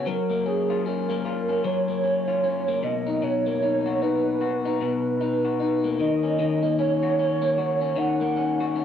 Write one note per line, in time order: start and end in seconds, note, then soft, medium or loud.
0.00 0.15 C#3 medium
0.00 0.15 B3 medium
0.00 0.45 F#4 medium
0.00 0.15 G#4 medium
0.06 1.64 F#3 medium
0.06 0.46 A#4 loud
0.29 1.09 A#3 medium
0.46 0.85 C#4 medium
0.46 0.88 G#4 medium
0.70 1.24 F4 medium
0.86 1.48 C#4 medium
0.86 1.67 A#4 medium
1.09 1.88 A#3 medium
1.25 2.27 F4 medium
1.49 2.03 C#4 medium
1.64 5.14 F#3 medium
1.64 2.85 C#5 loud
1.88 2.68 A#3 medium
2.04 2.43 C#4 medium
2.28 2.92 F4 medium
2.44 2.93 C#4 medium
2.68 3.25 A#3 medium
2.83 3.21 B2 medium
2.83 3.17 D#5 medium
3.07 3.62 D#4 medium
3.17 3.25 D#5 medium
3.22 4.80 B2 medium
3.22 4.02 C#5 loud
3.46 4.84 A#3 medium
3.62 4.01 D#4 medium
3.86 4.41 F#4 medium
4.02 4.65 D#4 medium
4.02 4.77 B4 loud
4.41 5.44 F#4 medium
4.65 5.21 D#4 medium
4.81 6.09 B2 medium
4.81 5.96 B4 loud
5.21 5.60 D#4 medium
5.45 7.02 F#4 medium
5.60 6.23 D#4 medium
5.84 6.62 A#3 medium
6.00 6.38 D#3 medium
6.00 6.75 D#5 loud
6.23 6.78 C#4 medium
6.39 7.95 D#3 medium
6.63 7.41 A#3 soft
6.78 7.19 C#4 medium
6.78 7.99 C#5 loud
7.03 7.58 F#4 medium
7.19 7.81 C#4 medium
7.42 8.20 A#3 medium
7.58 8.60 F#4 medium
7.82 8.36 C#4 medium
7.97 8.85 D#3 medium
7.97 8.85 F#5 loud
8.21 8.85 A#3 medium
8.36 8.75 C#4 medium
8.60 8.85 F#4 medium
8.76 8.85 C#4 soft